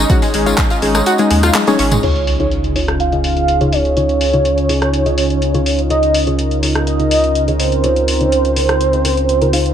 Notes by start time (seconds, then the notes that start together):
Already playing: G#3 C#4 D#4
0.10 G#3 C#4 D#4 F#4 G#4 C#5, kick, closed hi-hat, tambourine
0.22 G#3, open hi-hat, tambourine
0.34 G#1 G#3, open hi-hat
0.46 G#3 C#4 D#4 F4 G#4 C#5, closed hi-hat, tambourine
0.58 G#3, kick, clap, closed hi-hat, tambourine
0.70 F4, closed hi-hat, tambourine
0.82 G#1 G#3 C#4 D#4 G#4 C#5, open hi-hat
0.95 G#3, cross-stick, closed hi-hat, tambourine
1.06 F#4, closed hi-hat, tambourine
1.18 G#3 C#4 D#4 G#4 D#5, closed hi-hat, tambourine
1.31 D#2 G#3, open hi-hat
1.43 F4, cross-stick, closed hi-hat, tambourine
1.55 G#3, clap, closed hi-hat, high tom, tambourine
1.67 G#3 C#4 D#4 G#4 C#5, closed hi-hat, high tom, tambourine
1.79 G#1 C#4, open hi-hat
1.91 G#3, closed hi-hat, mid tom, tambourine
2.03 C#2 C#3 C#4 D#4 F4 G#4 C#5, closed hi-hat, crash, sub drop
2.16 closed hi-hat
2.27 open hi-hat
2.40 C#3 D#4 F4 G#4 C#5, closed hi-hat
2.51 closed hi-hat
2.64 closed hi-hat
2.76 C#3 D#4 F4 G#4 C#5, open hi-hat
2.88 cross-stick, closed hi-hat
3.00 F5, closed hi-hat
3.12 C#3 D#4 F4 G#4 D#5, closed hi-hat
3.24 open hi-hat
3.37 closed hi-hat
3.48 closed hi-hat
3.61 C#3 D#4 F4 G#4 C#5, closed hi-hat
3.72 C#5, open hi-hat
3.85 closed hi-hat
3.97 C#3 D#4 F4 G#4 C#5, closed hi-hat
4.09 closed hi-hat
4.21 open hi-hat
4.33 C#3 D#4 F4 G#4 C#5, closed hi-hat
4.45 closed hi-hat
4.58 closed hi-hat
4.69 C#3 D#4 F4 G#4 C#5, open hi-hat
4.82 cross-stick, closed hi-hat
4.94 closed hi-hat
5.06 C#3 D#4 F4 G#4 D#5, closed hi-hat
5.18 open hi-hat
5.30 closed hi-hat
5.42 closed hi-hat
5.54 C#3 D#4 F4 G#4 C#5, closed hi-hat
5.66 open hi-hat
5.79 closed hi-hat
5.90 C#3 D#4 F4 G#4 A#4 C#5 D#5, closed hi-hat
6.03 closed hi-hat
6.14 open hi-hat
6.27 C#3 D#4 F4 G#4 C#5, closed hi-hat
6.39 closed hi-hat
6.51 closed hi-hat
6.63 C#3 D#4 F4 G#4 C#5, open hi-hat
6.75 cross-stick, closed hi-hat
6.87 D#5, closed hi-hat
7.00 C#3 D#4 F4 G#4 D#5, closed hi-hat
7.11 open hi-hat
7.24 closed hi-hat
7.35 closed hi-hat
7.48 C#3 D#4 F4 G#4 C#5, closed hi-hat
7.60 C5, open hi-hat
7.72 closed hi-hat
7.84 C#3 D#4 F4 G#4 C#5, closed hi-hat
7.96 closed hi-hat
8.08 open hi-hat
8.21 C#3 D#4 F4 G#4 C#5, closed hi-hat
8.32 closed hi-hat
8.45 closed hi-hat
8.56 C#3 D#4 F4 G#4 C#5, open hi-hat
8.69 cross-stick, closed hi-hat
8.81 closed hi-hat
8.93 C#3 D#4 F4 G#4 D#5, closed hi-hat
9.05 C#3 D#4 F4 G#4 A#4, open hi-hat
9.17 closed hi-hat
9.29 closed hi-hat
9.42 C#3 D#4 F4 G#4 A#4, closed hi-hat
9.53 D#4 F4 G#4 F5, open hi-hat
9.66 closed hi-hat